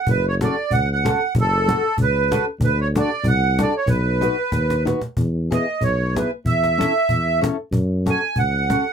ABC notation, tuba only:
X:1
M:2/4
L:1/8
Q:"Swing" 1/4=94
K:Bm
V:1 name="Tuba" clef=bass
F,,,2 C,,2 | F,,,2 C,,2 | D,,2 =C,,2 | B,,,2 ^D,,2 |
[K:E] E,,2 B,,,2 | E,,2 E,,2 | F,,2 C,,2 |]